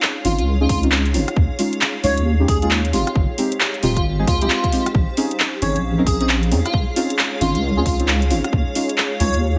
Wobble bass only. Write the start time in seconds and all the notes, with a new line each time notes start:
0.25 G#1
0.38 C#2
1.14 G#1
1.36 D#2
2.04 C#2
2.18 D#2
2.48 D#2
2.93 G#1
3.15 G#1
3.83 D#1
3.97 G#1
4.28 D#2
4.41 C2
4.95 A#1
5.62 G#1
5.76 A#1
6.07 A#1
6.51 F2
6.74 C#2
7.41 G#1
7.55 C#2
7.86 C#2
8.30 G#1
8.53 D#2
9.20 C#2
9.34 D#2